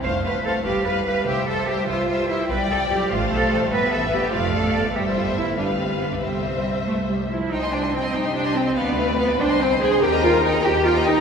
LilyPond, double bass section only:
\new Staff \with { instrumentName = "Double bass section" } { \clef bass \time 6/8 \key c \major \tempo 4. = 97 f,,4. g,,4. | c,4. c,4. | b,,8 c,8 b,,8 a,,8 b,,8 a,,8 | g,,8 a,,8 g,,8 f,,8 a,,8 g,,8 |
g,,2. | c,2~ c,8 r8 | \key c \minor c,4. c,4. | d,4. c,4. |
ees,4. ees,4. | }